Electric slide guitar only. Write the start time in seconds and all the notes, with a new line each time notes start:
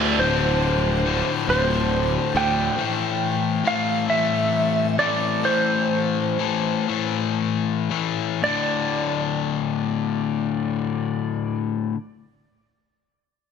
Already playing: D5
0.19 C5
1.50 C5
2.37 G5
3.67 F5
4.10 E5
4.99 D5
5.45 C5
8.44 D5